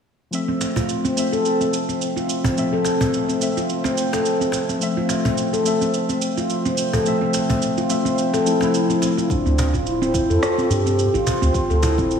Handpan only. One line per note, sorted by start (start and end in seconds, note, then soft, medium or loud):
0.48 0.75 C4 medium
0.76 1.03 F4 medium
1.05 1.16 C4 medium
1.33 1.44 A4 medium
1.61 1.87 C4 medium
1.89 2.15 C4 medium
2.16 2.43 F4 medium
2.44 2.56 C4 medium
2.73 2.84 A4 medium
3.01 3.27 C4 medium
3.29 3.55 C4 medium
3.57 3.83 F4 medium
3.85 3.97 C4 loud
4.13 4.25 A4 medium
4.41 4.67 C4 medium
4.69 4.96 C4 medium
4.97 5.24 F4 medium
5.25 5.37 C4 medium
5.53 5.65 A4 medium
5.81 6.08 C4 medium
6.09 6.36 C4 medium
6.37 6.64 F4 medium
6.65 6.77 C4 loud
6.94 7.05 A4 medium
7.21 7.48 C4 medium
7.49 7.76 C4 medium
7.78 8.04 F4 medium
8.05 8.17 C4 medium
8.34 8.45 A4 medium
8.62 8.88 C4 medium
8.90 9.16 C4 medium
9.18 9.30 F4 medium
9.46 9.72 C4 medium
9.74 10.00 F4 medium
10.02 10.13 C4 medium
10.30 10.42 A4 medium
10.58 10.84 C4 medium
10.86 11.12 C4 medium
11.14 11.41 F4 medium
11.42 11.54 C4 medium
11.70 11.82 A4 medium
11.98 12.20 C4 medium